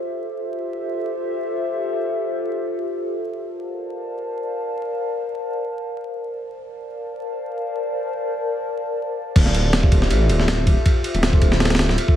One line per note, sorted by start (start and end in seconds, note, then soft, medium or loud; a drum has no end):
0.00 0.34 F4 medium
0.00 0.34 G4 medium
0.00 0.34 A4 medium
0.00 0.34 C5 medium
0.00 0.34 E5 loud
0.36 3.34 F4 medium
0.36 3.34 G4 medium
0.36 3.34 A4 medium
0.36 3.34 C5 medium
0.36 3.34 E5 loud
3.36 6.34 A#4 medium
3.36 6.34 C5 medium
3.36 6.34 D5 medium
3.36 6.34 F5 medium
3.36 6.34 A5 loud
6.35 9.34 A#4 medium
6.35 9.33 C5 medium
6.35 9.34 D5 medium
6.35 9.34 F5 medium
6.35 9.34 A5 medium
9.36 10.12 D1 loud
9.36 10.27 F4 loud
9.36 10.27 G4 loud
9.36 10.27 A4 loud
9.36 10.27 C5 loud
9.36 10.27 E5 loud
9.36 kick loud
9.36 crash medium
9.36 ride medium
9.46 snare soft
9.55 ride medium
9.73 snare loud
9.73 ride medium
9.83 kick loud
9.92 kick medium
9.92 ride medium
10.02 snare soft
10.11 10.31 A1 medium
10.11 ride medium
10.29 10.75 D1 medium
10.29 ride medium
10.39 snare soft
10.48 snare loud
10.48 ride medium
10.67 kick loud
10.67 ride medium
10.85 11.77 F4 loud
10.85 11.77 G4 loud
10.85 11.77 A4 loud
10.85 11.77 C5 loud
10.85 11.77 E5 loud
10.85 kick loud
10.85 ride medium
11.04 ride medium
11.14 11.97 D1 loud
11.14 ride soft
11.23 snare loud
11.23 ride medium
11.33 kick loud
11.42 kick medium
11.42 ride medium
11.52 snare medium
11.60 snare medium
11.60 ride medium
11.65 snare medium
11.65 ride medium
11.70 snare medium
11.70 ride medium
11.75 snare medium
11.75 ride medium
11.79 snare loud
11.79 ride medium
11.89 snare soft
11.98 ride medium
12.08 kick medium